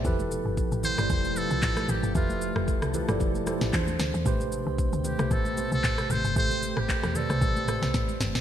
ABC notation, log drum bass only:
X:1
M:4/4
L:1/16
Q:"Swing 16ths" 1/4=114
K:Am
V:1 name="Log drum bass" clef=bass
F,,,3 G,,,2 A,,,2 G,,, F,,,3 C,, A,,,2 A,,, G,,, | F,,,3 F,,,2 C,,2 G,,, F,,,3 A,,, E,,2 D,, E,, | A,,,3 C,,2 D,,2 C,, A,,,3 C,, A,,,2 A,,, G,,, | A,,,3 A,,,2 E,,2 C,, A,,,3 C,, A,,,2 G,,, A,,, |]